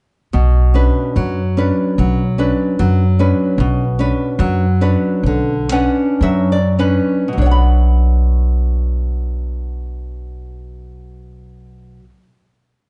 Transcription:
0, 0, Header, 1, 3, 480
1, 0, Start_track
1, 0, Key_signature, 2, "minor"
1, 0, Tempo, 828729
1, 197, Time_signature, 2, 2, 24, 8
1, 1154, Tempo, 801068
1, 2594, Tempo, 846262
1, 3074, Tempo, 975610
1, 3554, Tempo, 1178782
1, 4034, Tempo, 1224490
1, 4994, Tempo, 1244813
1, 6171, End_track
2, 0, Start_track
2, 0, Title_t, "Nylon-string guitar"
2, 0, Program_c, 0, 24
2, 193, Note_on_c, 0, 47, 54
2, 428, Note_on_c, 0, 61, 43
2, 433, Note_on_c, 0, 62, 40
2, 437, Note_on_c, 0, 71, 45
2, 662, Note_off_c, 0, 47, 0
2, 674, Note_on_c, 0, 54, 50
2, 814, Note_off_c, 0, 61, 0
2, 817, Note_off_c, 0, 62, 0
2, 818, Note_off_c, 0, 71, 0
2, 910, Note_on_c, 0, 61, 40
2, 912, Note_on_c, 0, 62, 36
2, 917, Note_on_c, 0, 71, 46
2, 1137, Note_off_c, 0, 54, 0
2, 1152, Note_on_c, 0, 54, 58
2, 1296, Note_off_c, 0, 61, 0
2, 1298, Note_off_c, 0, 62, 0
2, 1301, Note_off_c, 0, 71, 0
2, 1388, Note_on_c, 0, 61, 45
2, 1391, Note_on_c, 0, 62, 40
2, 1395, Note_on_c, 0, 71, 47
2, 1624, Note_off_c, 0, 54, 0
2, 1633, Note_on_c, 0, 54, 59
2, 1775, Note_off_c, 0, 62, 0
2, 1776, Note_off_c, 0, 61, 0
2, 1779, Note_off_c, 0, 71, 0
2, 1873, Note_on_c, 0, 61, 45
2, 1876, Note_on_c, 0, 62, 41
2, 1879, Note_on_c, 0, 71, 47
2, 2095, Note_off_c, 0, 54, 0
2, 2118, Note_on_c, 0, 47, 60
2, 2253, Note_off_c, 0, 61, 0
2, 2255, Note_off_c, 0, 62, 0
2, 2256, Note_off_c, 0, 71, 0
2, 2351, Note_on_c, 0, 61, 50
2, 2353, Note_on_c, 0, 62, 43
2, 2359, Note_on_c, 0, 71, 49
2, 2582, Note_off_c, 0, 47, 0
2, 2595, Note_on_c, 0, 54, 63
2, 2737, Note_off_c, 0, 61, 0
2, 2739, Note_off_c, 0, 62, 0
2, 2742, Note_off_c, 0, 71, 0
2, 2830, Note_on_c, 0, 62, 42
2, 2832, Note_on_c, 0, 61, 44
2, 2834, Note_on_c, 0, 71, 50
2, 3060, Note_off_c, 0, 54, 0
2, 3085, Note_on_c, 0, 50, 53
2, 3213, Note_off_c, 0, 62, 0
2, 3214, Note_off_c, 0, 61, 0
2, 3214, Note_off_c, 0, 71, 0
2, 3306, Note_off_c, 0, 50, 0
2, 3307, Note_on_c, 0, 61, 44
2, 3308, Note_on_c, 0, 62, 41
2, 3310, Note_on_c, 0, 71, 47
2, 3311, Note_on_c, 0, 78, 61
2, 3541, Note_off_c, 0, 78, 0
2, 3557, Note_on_c, 0, 76, 57
2, 3558, Note_on_c, 0, 54, 50
2, 3661, Note_off_c, 0, 76, 0
2, 3677, Note_on_c, 0, 74, 49
2, 3701, Note_off_c, 0, 61, 0
2, 3701, Note_off_c, 0, 62, 0
2, 3702, Note_off_c, 0, 71, 0
2, 3782, Note_off_c, 0, 74, 0
2, 3786, Note_on_c, 0, 61, 39
2, 3788, Note_on_c, 0, 62, 36
2, 3788, Note_on_c, 0, 71, 54
2, 3789, Note_off_c, 0, 71, 0
2, 3789, Note_on_c, 0, 71, 45
2, 3797, Note_off_c, 0, 71, 0
2, 3984, Note_off_c, 0, 61, 0
2, 3985, Note_off_c, 0, 54, 0
2, 3985, Note_off_c, 0, 62, 0
2, 3987, Note_on_c, 0, 47, 41
2, 4006, Note_on_c, 0, 54, 36
2, 4028, Note_on_c, 0, 62, 39
2, 4042, Note_on_c, 0, 73, 37
2, 4059, Note_on_c, 0, 78, 39
2, 4078, Note_off_c, 0, 73, 0
2, 4080, Note_on_c, 0, 83, 44
2, 5821, Note_off_c, 0, 47, 0
2, 5840, Note_off_c, 0, 54, 0
2, 5860, Note_off_c, 0, 62, 0
2, 5890, Note_off_c, 0, 78, 0
2, 5911, Note_off_c, 0, 83, 0
2, 6171, End_track
3, 0, Start_track
3, 0, Title_t, "Upright bass"
3, 0, Program_c, 1, 32
3, 198, Note_on_c, 1, 35, 68
3, 510, Note_off_c, 1, 35, 0
3, 670, Note_on_c, 1, 42, 72
3, 982, Note_off_c, 1, 42, 0
3, 1147, Note_on_c, 1, 35, 77
3, 1465, Note_off_c, 1, 35, 0
3, 1635, Note_on_c, 1, 42, 78
3, 1944, Note_off_c, 1, 42, 0
3, 2105, Note_on_c, 1, 35, 73
3, 2420, Note_off_c, 1, 35, 0
3, 2589, Note_on_c, 1, 42, 82
3, 2903, Note_off_c, 1, 42, 0
3, 3069, Note_on_c, 1, 35, 66
3, 3383, Note_off_c, 1, 35, 0
3, 3549, Note_on_c, 1, 42, 70
3, 3863, Note_off_c, 1, 42, 0
3, 4025, Note_on_c, 1, 35, 64
3, 5858, Note_off_c, 1, 35, 0
3, 6171, End_track
0, 0, End_of_file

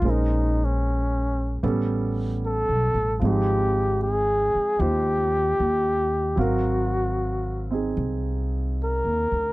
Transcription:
0, 0, Header, 1, 5, 480
1, 0, Start_track
1, 0, Tempo, 791557
1, 21, Time_signature, 4, 2, 24, 8
1, 3861, Tempo, 803213
1, 5749, End_track
2, 0, Start_track
2, 0, Title_t, "Muted trumpet"
2, 0, Program_c, 0, 59
2, 0, Note_on_c, 0, 65, 66
2, 60, Note_on_c, 0, 63, 69
2, 69, Note_off_c, 0, 65, 0
2, 390, Note_on_c, 0, 61, 63
2, 399, Note_off_c, 0, 63, 0
2, 1005, Note_off_c, 0, 61, 0
2, 1491, Note_on_c, 0, 69, 82
2, 1931, Note_off_c, 0, 69, 0
2, 1971, Note_on_c, 0, 67, 79
2, 2412, Note_off_c, 0, 67, 0
2, 2441, Note_on_c, 0, 68, 75
2, 2910, Note_on_c, 0, 67, 80
2, 2919, Note_off_c, 0, 68, 0
2, 3880, Note_on_c, 0, 66, 61
2, 3889, Note_off_c, 0, 67, 0
2, 4674, Note_off_c, 0, 66, 0
2, 5337, Note_on_c, 0, 70, 70
2, 5749, Note_off_c, 0, 70, 0
2, 5749, End_track
3, 0, Start_track
3, 0, Title_t, "Grand piano"
3, 0, Program_c, 1, 0
3, 0, Control_c, 1, 64, 127
3, 26, Note_on_c, 1, 56, 38
3, 28, Control_c, 1, 64, 0
3, 30, Note_on_c, 1, 72, 34
3, 32, Note_on_c, 1, 61, 36
3, 37, Note_on_c, 1, 70, 40
3, 134, Control_c, 1, 64, 127
3, 984, Note_off_c, 1, 61, 0
3, 989, Note_off_c, 1, 56, 0
3, 989, Note_on_c, 1, 55, 47
3, 991, Note_off_c, 1, 72, 0
3, 993, Note_on_c, 1, 59, 41
3, 993, Note_on_c, 1, 61, 41
3, 994, Control_c, 1, 64, 0
3, 995, Note_off_c, 1, 70, 0
3, 997, Note_on_c, 1, 69, 52
3, 1088, Control_c, 1, 64, 127
3, 1938, Note_on_c, 1, 53, 43
3, 1943, Note_off_c, 1, 55, 0
3, 1945, Note_off_c, 1, 59, 0
3, 1945, Note_off_c, 1, 61, 0
3, 1947, Note_off_c, 1, 69, 0
3, 1949, Note_on_c, 1, 60, 36
3, 1950, Control_c, 1, 64, 0
3, 1961, Note_on_c, 1, 63, 39
3, 1970, Note_on_c, 1, 56, 47
3, 2055, Control_c, 1, 64, 127
3, 2894, Note_off_c, 1, 63, 0
3, 2903, Note_on_c, 1, 63, 36
3, 2914, Note_on_c, 1, 65, 35
3, 2920, Note_on_c, 1, 72, 40
3, 3855, Note_off_c, 1, 60, 0
3, 3855, Note_on_c, 1, 54, 42
3, 3857, Note_off_c, 1, 53, 0
3, 3861, Note_off_c, 1, 63, 0
3, 3864, Note_on_c, 1, 60, 42
3, 3866, Note_off_c, 1, 65, 0
3, 3868, Control_c, 1, 64, 0
3, 3869, Note_off_c, 1, 72, 0
3, 3873, Note_off_c, 1, 56, 0
3, 3873, Note_on_c, 1, 77, 42
3, 3884, Note_on_c, 1, 70, 48
3, 3975, Control_c, 1, 64, 127
3, 4652, Note_off_c, 1, 60, 0
3, 4661, Note_on_c, 1, 60, 36
3, 4669, Note_on_c, 1, 63, 34
3, 4677, Note_on_c, 1, 68, 38
3, 5749, Note_off_c, 1, 54, 0
3, 5749, Note_off_c, 1, 60, 0
3, 5749, Note_off_c, 1, 63, 0
3, 5749, Note_off_c, 1, 68, 0
3, 5749, Note_off_c, 1, 70, 0
3, 5749, Note_off_c, 1, 77, 0
3, 5749, End_track
4, 0, Start_track
4, 0, Title_t, "Upright bass"
4, 0, Program_c, 2, 32
4, 11, Note_on_c, 2, 34, 63
4, 958, Note_off_c, 2, 34, 0
4, 991, Note_on_c, 2, 33, 70
4, 1602, Note_off_c, 2, 33, 0
4, 1630, Note_on_c, 2, 35, 45
4, 1775, Note_off_c, 2, 35, 0
4, 1783, Note_on_c, 2, 33, 52
4, 1931, Note_off_c, 2, 33, 0
4, 1949, Note_on_c, 2, 32, 66
4, 2730, Note_off_c, 2, 32, 0
4, 2908, Note_on_c, 2, 39, 68
4, 3359, Note_off_c, 2, 39, 0
4, 3394, Note_on_c, 2, 39, 56
4, 3842, Note_off_c, 2, 39, 0
4, 3864, Note_on_c, 2, 32, 66
4, 4791, Note_off_c, 2, 32, 0
4, 4818, Note_on_c, 2, 36, 63
4, 5435, Note_off_c, 2, 36, 0
4, 5461, Note_on_c, 2, 39, 42
4, 5610, Note_off_c, 2, 39, 0
4, 5623, Note_on_c, 2, 38, 49
4, 5749, Note_off_c, 2, 38, 0
4, 5749, End_track
5, 0, Start_track
5, 0, Title_t, "Muted upright bass strokes"
5, 2758, Note_on_c, 9, 29, 30
5, 2818, Note_off_c, 9, 29, 0
5, 5749, End_track
0, 0, End_of_file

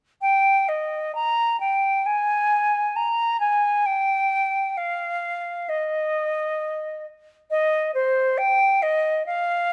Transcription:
0, 0, Header, 1, 2, 480
1, 0, Start_track
1, 0, Key_signature, -3, "major"
1, 0, Tempo, 914634
1, 112, Time_signature, 4, 2, 24, 8
1, 3471, Tempo, 887574
1, 5156, End_track
2, 0, Start_track
2, 0, Title_t, "Flute"
2, 0, Program_c, 0, 73
2, 112, Note_on_c, 0, 79, 75
2, 359, Note_on_c, 0, 75, 65
2, 366, Note_off_c, 0, 79, 0
2, 599, Note_off_c, 0, 75, 0
2, 602, Note_on_c, 0, 82, 74
2, 836, Note_off_c, 0, 82, 0
2, 840, Note_on_c, 0, 79, 71
2, 1080, Note_on_c, 0, 80, 80
2, 1088, Note_off_c, 0, 79, 0
2, 1553, Note_on_c, 0, 82, 72
2, 1561, Note_off_c, 0, 80, 0
2, 1781, Note_off_c, 0, 82, 0
2, 1784, Note_on_c, 0, 80, 76
2, 2024, Note_on_c, 0, 79, 83
2, 2032, Note_off_c, 0, 80, 0
2, 2504, Note_on_c, 0, 77, 72
2, 2512, Note_off_c, 0, 79, 0
2, 2985, Note_on_c, 0, 75, 75
2, 2993, Note_off_c, 0, 77, 0
2, 3711, Note_off_c, 0, 75, 0
2, 3952, Note_on_c, 0, 75, 83
2, 4174, Note_off_c, 0, 75, 0
2, 4189, Note_on_c, 0, 72, 76
2, 4425, Note_on_c, 0, 79, 87
2, 4433, Note_off_c, 0, 72, 0
2, 4665, Note_on_c, 0, 75, 76
2, 4673, Note_off_c, 0, 79, 0
2, 4898, Note_off_c, 0, 75, 0
2, 4901, Note_on_c, 0, 77, 89
2, 5156, Note_off_c, 0, 77, 0
2, 5156, End_track
0, 0, End_of_file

